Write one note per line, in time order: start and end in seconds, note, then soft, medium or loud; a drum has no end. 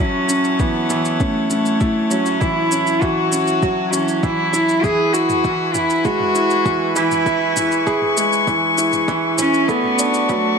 0.00 4.81 F#1 medium
0.00 0.60 E3 medium
0.00 2.11 F#3 medium
0.00 0.29 C#4 medium
0.00 0.61 C#4 medium
0.00 1.81 E4 medium
0.00 9.65 E4 medium
0.00 4.80 C#5 medium
0.00 4.80 F#5 medium
0.00 4.80 A5 medium
0.29 0.58 C#4 medium
0.29 shaker medium
0.44 shaker soft
0.59 0.89 E3 medium
0.59 1.22 B3 medium
0.59 kick loud
0.59 shaker soft
0.90 1.19 E3 medium
0.90 shaker medium
1.05 shaker soft
1.20 1.50 A3 medium
1.20 1.38 C#4 medium
1.20 kick loud
1.20 shaker soft
1.50 2.12 A3 medium
1.50 1.79 C#4 medium
1.50 shaker medium
1.66 shaker soft
1.81 2.10 E4 medium
1.81 kick loud
1.81 shaker soft
2.10 2.40 F#3 medium
2.10 2.42 C#4 medium
2.10 shaker medium
2.26 shaker soft
2.41 2.70 E3 medium
2.41 3.03 E4 medium
2.41 kick medium
2.41 shaker soft
2.71 3.01 C#4 medium
2.71 shaker medium
2.87 shaker soft
3.01 3.19 E3 medium
3.01 3.93 F#4 loud
3.01 kick medium
3.01 shaker soft
3.32 3.61 C#4 medium
3.32 shaker medium
3.47 shaker soft
3.62 3.80 F#3 medium
3.62 kick loud
3.62 shaker soft
3.92 4.22 E3 medium
3.92 4.24 C#4 medium
3.92 shaker medium
4.08 shaker soft
4.23 4.41 E3 medium
4.23 4.85 E4 medium
4.23 kick loud
4.23 shaker soft
4.53 4.82 E4 medium
4.53 shaker medium
4.69 shaker soft
4.83 9.66 F#1 medium
4.83 5.13 E3 medium
4.83 5.14 G#4 loud
4.83 9.64 B4 medium
4.83 9.64 G#5 medium
4.83 7.24 B5 medium
4.83 kick medium
4.83 mid tom medium
4.83 shaker soft
5.13 5.43 E4 medium
5.13 5.76 F#4 loud
5.13 shaker medium
5.29 mid tom medium
5.29 shaker soft
5.44 5.62 E3 medium
5.44 kick loud
5.44 shaker soft
5.74 6.06 E4 medium
5.74 6.04 E4 medium
5.74 mid tom medium
5.74 shaker medium
5.90 shaker soft
6.04 6.22 G#3 medium
6.04 6.95 F#4 loud
6.04 kick medium
6.04 shaker soft
6.20 mid tom medium
6.35 6.64 E4 medium
6.35 shaker medium
6.50 shaker soft
6.66 6.94 E3 medium
6.66 kick loud
6.66 mid tom medium
6.66 shaker soft
6.96 7.25 E3 loud
6.96 8.13 E4 loud
6.96 shaker medium
7.11 mid tom medium
7.11 shaker soft
7.26 7.43 E4 loud
7.26 9.66 C#6 medium
7.26 kick medium
7.26 shaker soft
7.56 7.85 E4 medium
7.56 mid tom medium
7.56 shaker medium
7.72 shaker soft
7.87 8.16 G#4 loud
7.87 kick medium
7.87 shaker soft
8.02 mid tom medium
8.17 8.46 G#3 medium
8.17 shaker medium
8.33 shaker soft
8.47 8.76 E3 medium
8.47 kick loud
8.47 mid tom medium
8.47 shaker soft
8.78 9.07 E4 medium
8.78 shaker medium
8.93 mid tom medium
8.93 shaker soft
9.08 9.25 E3 loud
9.08 kick loud
9.08 shaker soft
9.38 9.70 C#4 loud
9.38 9.67 E4 medium
9.38 mid tom medium
9.38 shaker medium
9.54 shaker soft
9.68 10.59 F#1 medium
9.68 9.86 A3 medium
9.68 10.30 B3 loud
9.68 10.59 F#4 medium
9.68 10.59 D5 medium
9.68 10.59 A5 medium
9.68 10.59 C#6 medium
9.68 kick medium
9.68 shaker soft
9.84 mid tom medium
9.99 10.28 D4 medium
9.99 shaker medium
10.14 shaker soft
10.29 10.58 F#3 medium
10.29 10.59 A3 loud
10.29 kick medium
10.29 mid tom medium
10.29 shaker soft